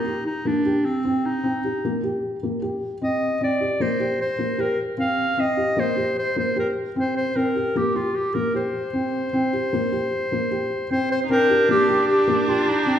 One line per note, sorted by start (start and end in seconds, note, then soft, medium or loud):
0.00 0.25 D#4 medium
0.06 0.38 G4 medium
0.26 0.49 D#4 medium
0.45 0.61 A#3 medium
0.45 0.87 D4 medium
0.66 0.97 G4 medium
0.85 1.27 C4 medium
1.05 1.37 C4 medium
1.26 2.04 D#4 medium
1.44 1.60 C4 medium
1.64 1.80 G4 medium
1.85 2.00 A#3 medium
2.04 2.35 G4 medium
2.43 2.59 A#3 medium
2.62 2.94 G4 medium
3.02 3.33 C4 medium
3.02 3.40 D#5 medium
3.41 3.57 C4 medium
3.41 3.83 D5 medium
3.61 3.77 G4 medium
3.80 3.96 A#3 medium
3.80 4.21 C5 medium
3.80 5.35 A#6 medium
4.00 4.32 G4 medium
4.21 4.62 C5 medium
4.38 4.55 A#3 medium
4.58 4.91 G4 medium
4.58 4.80 A#4 medium
4.98 5.30 C4 medium
4.98 5.42 F5 medium
5.38 5.54 C4 medium
5.38 5.81 D#5 medium
5.57 5.74 G4 medium
5.77 5.93 A#3 medium
5.77 6.18 C5 medium
5.96 6.29 G4 medium
6.18 6.37 C5 medium
6.36 6.53 A#3 medium
6.36 6.57 C5 medium
6.56 6.88 G4 medium
6.56 6.68 A#4 medium
6.96 7.28 C4 medium
6.96 7.16 C5 medium
7.16 7.38 C5 medium
7.36 7.52 C4 medium
7.36 7.78 A#4 medium
7.55 7.71 G4 medium
7.75 7.91 A#3 medium
7.75 7.97 G4 medium
7.95 8.16 F4 medium
7.95 8.27 G4 medium
8.15 8.36 G4 medium
8.34 8.51 A#3 medium
8.34 8.54 A#4 medium
8.54 8.86 G4 medium
8.54 10.87 C5 medium
8.93 9.25 C4 medium
9.33 9.49 C4 medium
9.53 9.69 G4 medium
9.73 9.89 A#3 medium
9.92 10.24 G4 medium
10.32 10.48 A#3 medium
10.51 10.83 G4 medium
10.91 11.22 C4 medium
10.91 11.10 C5 medium
11.11 11.20 C5 medium
11.24 11.31 D#4 medium
11.30 11.46 C4 medium
11.30 12.99 D4 medium
11.30 11.67 A#4 medium
11.30 12.86 G6 medium
11.50 11.66 G4 medium
11.69 11.85 A#3 medium
11.69 12.07 G4 medium
11.88 12.20 G4 medium
12.08 12.45 G4 medium
12.27 12.44 A#3 medium
12.47 12.70 F4 medium
12.47 12.79 G4 medium
12.69 12.99 D#4 medium
12.86 12.99 C4 medium